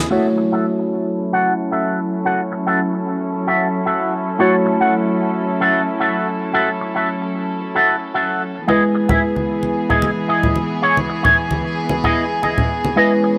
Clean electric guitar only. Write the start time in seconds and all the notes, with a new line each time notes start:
0.11 F#4 A4 E5
0.38 muted clean electric guitar stroke
0.52 F#4 A4 E5
0.79 muted clean electric guitar stroke
1.18 muted clean electric guitar stroke
1.33 F#4 A4 F#5
1.71 F#4 A4 E5
2.25 F#4 A4 F#5
2.52 muted clean electric guitar stroke
2.66 F#4 A4 E5
2.93 muted clean electric guitar stroke
3.33 muted clean electric guitar stroke
3.47 F#4 A4 E5
3.86 F#4 A4 E5
4.39 F#4 A4 C#5
4.66 muted clean electric guitar stroke
4.80 F#4 A4 F#5
5.07 muted clean electric guitar stroke
5.46 muted clean electric guitar stroke
5.61 F#4 A4 E5
6.00 F#4 A4 E5
6.54 F#4 A4 E5
6.81 muted clean electric guitar stroke
6.95 F#4 A4 E5
7.21 muted clean electric guitar stroke
7.61 muted clean electric guitar stroke
7.75 F#4 A4 E5
8.14 F#4 A4 E5
8.68 E4 G#4 D#5
8.95 muted clean electric guitar stroke
9.09 E4 G#4 E5
9.36 muted clean electric guitar stroke
9.75 muted clean electric guitar stroke
9.89 E4 G#4 D#5
10.28 E4 G#4 D#5
10.82 E4 G#4 C#5
11.09 muted clean electric guitar stroke
11.23 E4 G#4 C#5
11.50 muted clean electric guitar stroke
11.89 muted clean electric guitar stroke
12.04 E4 G#4 D#5
12.43 E4 G#4 D#5
12.96 E4 G#4 D#5
13.24 muted clean electric guitar stroke